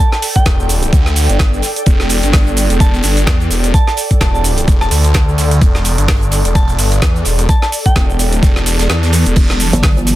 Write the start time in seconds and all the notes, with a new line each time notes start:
Already playing: A4 D5 G5
0.00 shaker
0.12 A5, snare, shaker
0.22 closed hi-hat, open hi-hat, shaker
0.36 G5, kick, closed hi-hat, shaker
0.46 E1, kick, snare, closed hi-hat, shaker
0.60 shaker
0.69 closed hi-hat, open hi-hat, shaker
0.83 closed hi-hat, shaker
0.93 D2, kick, closed hi-hat, shaker
1.06 snare, shaker
1.16 closed hi-hat, open hi-hat, shaker
1.29 G1, closed hi-hat, shaker
1.39 kick, snare, closed hi-hat, shaker
1.54 shaker
1.62 snare, closed hi-hat, open hi-hat, shaker
1.76 closed hi-hat, shaker
1.86 E1, kick, closed hi-hat, shaker
2.00 snare, shaker
2.09 closed hi-hat, open hi-hat, shaker
2.23 G1, closed hi-hat, shaker
2.33 kick, snare, closed hi-hat, open hi-hat, shaker
2.47 closed hi-hat, shaker
2.56 snare, closed hi-hat, open hi-hat, shaker
2.70 E1, closed hi-hat, shaker
2.80 A5, kick, closed hi-hat, shaker
2.94 closed hi-hat, shaker
3.03 G1, closed hi-hat, open hi-hat, shaker
3.17 closed hi-hat, shaker
3.27 E2, kick, snare, closed hi-hat, shaker
3.40 closed hi-hat, shaker
3.51 E1, snare, closed hi-hat, open hi-hat, shaker
3.64 closed hi-hat, shaker
3.74 A5, kick, closed hi-hat, shaker
3.87 A5, snare, shaker
3.97 closed hi-hat, open hi-hat, shaker
4.11 kick, closed hi-hat, shaker
4.21 E1 A5, kick, snare, closed hi-hat, shaker
4.34 A5, shaker
4.44 closed hi-hat, open hi-hat, shaker
4.58 closed hi-hat, shaker
4.68 E1, kick, closed hi-hat, shaker
4.81 A5, snare, shaker
4.91 D2, closed hi-hat, open hi-hat, shaker
5.04 closed hi-hat, shaker
5.14 kick, snare, closed hi-hat, shaker
5.28 D2, shaker
5.38 snare, closed hi-hat, open hi-hat, shaker
5.51 closed hi-hat, shaker
5.61 E1, kick, closed hi-hat, shaker
5.75 snare, shaker
5.85 closed hi-hat, open hi-hat, shaker
5.98 G1, closed hi-hat, shaker
6.08 kick, snare, closed hi-hat, open hi-hat, shaker
6.21 closed hi-hat, shaker
6.31 snare, closed hi-hat, open hi-hat, shaker
6.45 E1, closed hi-hat, shaker
6.55 A5, kick, closed hi-hat, shaker
6.68 closed hi-hat, shaker
6.79 G1, closed hi-hat, open hi-hat, shaker
6.92 closed hi-hat, shaker
7.00 E2 A5, kick, snare, closed hi-hat, shaker
7.16 closed hi-hat, shaker
7.25 E1, snare, closed hi-hat, open hi-hat, shaker
7.39 closed hi-hat, shaker
7.49 A5, kick, closed hi-hat, shaker
7.62 A5, snare, shaker
7.72 open hi-hat, shaker
7.86 G5, kick, closed hi-hat, shaker
7.96 E1, kick, snare, closed hi-hat, shaker
8.10 shaker
8.19 closed hi-hat, open hi-hat, shaker
8.33 closed hi-hat, shaker
8.43 E1, kick, snare, closed hi-hat, shaker
8.56 snare, shaker
8.66 snare, closed hi-hat, open hi-hat, shaker
8.79 E1, snare, closed hi-hat, shaker
8.90 E2, snare, closed hi-hat, shaker
9.03 snare, closed hi-hat, shaker
9.13 snare, closed hi-hat, open hi-hat, shaker
9.26 E1, closed hi-hat, shaker
9.36 E1 E3 F#3 G3, kick, closed hi-hat, crash, shaker
9.50 snare, shaker
9.60 closed hi-hat, open hi-hat, shaker
9.73 G1, closed hi-hat, shaker
9.83 kick, snare, closed hi-hat, open hi-hat, shaker
9.97 closed hi-hat, shaker
10.07 snare, closed hi-hat, open hi-hat, shaker